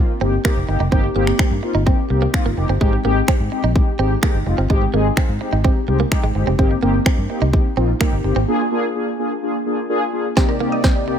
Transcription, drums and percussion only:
0.45 finger snap loud
0.45 kick loud
0.92 kick loud
1.27 finger snap medium
1.39 finger snap loud
1.39 kick loud
1.87 kick loud
2.34 finger snap loud
2.34 kick loud
2.81 kick loud
3.28 finger snap loud
3.28 kick loud
3.76 kick loud
4.23 finger snap loud
4.23 kick loud
4.70 kick loud
5.17 finger snap loud
5.17 kick loud
5.64 kick loud
6.12 finger snap loud
6.12 kick loud
6.59 kick loud
7.06 finger snap loud
7.06 kick loud
7.53 kick loud
8.01 finger snap loud
8.01 kick loud
10.37 kick loud
10.37 snare medium
10.84 kick loud
10.84 snare soft

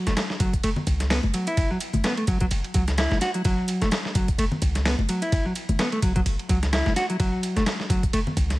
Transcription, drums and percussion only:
0.07 snare soft
0.07 closed hi-hat soft
0.07 high conga medium
0.17 snare loud
0.17 closed hi-hat soft
0.17 ride medium
0.30 snare soft
0.40 kick medium
0.40 closed hi-hat medium
0.40 ride medium
0.53 kick medium
0.53 closed hi-hat soft
0.63 closed hi-hat soft
0.63 ride medium
0.76 low conga medium
0.87 kick medium
0.87 closed hi-hat medium
0.87 ride medium
1.00 snare soft
1.00 closed hi-hat soft
1.10 snare loud
1.10 closed hi-hat soft
1.10 open hi-hat medium
1.23 high conga medium
1.34 closed hi-hat medium
1.34 ride medium
1.47 closed hi-hat soft
1.47 ride soft
1.57 kick loud
1.57 closed hi-hat soft
1.57 ride medium
1.80 closed hi-hat medium
1.80 ride medium
1.93 closed hi-hat soft
1.93 high conga medium
1.93 low conga medium
2.04 snare loud
2.04 closed hi-hat soft
2.04 ride medium
2.17 ride soft
2.27 kick medium
2.27 closed hi-hat medium
2.27 ride medium
2.40 kick loud
2.40 closed hi-hat soft
2.51 closed hi-hat soft
2.51 ride medium
2.64 ride soft
2.74 kick medium
2.74 closed hi-hat medium
2.74 ride medium
2.88 snare soft
2.88 closed hi-hat soft
2.98 snare loud
2.98 closed hi-hat soft
2.98 ride medium
3.11 snare soft
3.11 high conga medium
3.21 snare soft
3.21 closed hi-hat medium
3.21 ride medium
3.34 closed hi-hat soft
3.44 kick loud
3.44 closed hi-hat soft
3.44 ride medium
3.68 closed hi-hat medium
3.68 ride medium
3.81 snare soft
3.81 closed hi-hat soft
3.81 high conga medium
3.91 snare loud
3.91 closed hi-hat soft
3.91 ride medium
4.05 snare soft
4.15 kick medium
4.15 closed hi-hat medium
4.15 ride medium
4.28 kick medium
4.28 closed hi-hat soft
4.38 closed hi-hat soft
4.38 ride medium
4.51 low conga medium
4.62 kick loud
4.62 closed hi-hat medium
4.62 ride medium
4.75 snare soft
4.75 closed hi-hat soft
4.85 snare loud
4.85 closed hi-hat soft
4.85 open hi-hat medium
4.99 high conga medium
5.09 closed hi-hat medium
5.09 ride medium
5.22 closed hi-hat soft
5.22 ride soft
5.32 kick loud
5.32 closed hi-hat soft
5.32 ride medium
5.55 closed hi-hat medium
5.55 ride medium
5.69 closed hi-hat soft
5.69 high conga medium
5.69 low conga medium
5.79 snare loud
5.79 closed hi-hat soft
5.79 ride medium
5.92 ride soft
6.02 kick medium
6.02 closed hi-hat medium
6.02 ride medium
6.16 kick medium
6.16 closed hi-hat soft
6.26 closed hi-hat soft
6.26 ride medium
6.39 ride soft
6.49 kick medium
6.49 closed hi-hat medium
6.49 ride medium
6.63 snare soft
6.63 closed hi-hat soft
6.73 snare loud
6.73 closed hi-hat soft
6.73 ride medium
6.86 snare soft
6.86 high conga medium
6.96 snare soft
6.96 closed hi-hat medium
6.96 ride medium
7.10 closed hi-hat soft
7.20 kick loud
7.20 closed hi-hat soft
7.20 ride medium
7.43 closed hi-hat medium
7.43 ride medium
7.56 snare soft
7.56 closed hi-hat soft
7.56 high conga medium
7.66 snare loud
7.66 closed hi-hat soft
7.66 ride medium
7.80 snare soft
7.90 kick medium
7.90 closed hi-hat medium
7.90 ride medium
8.03 kick medium
8.03 closed hi-hat soft
8.13 closed hi-hat soft
8.13 ride medium
8.27 low conga medium
8.37 kick medium
8.37 closed hi-hat medium
8.37 ride medium
8.50 snare soft
8.50 closed hi-hat soft

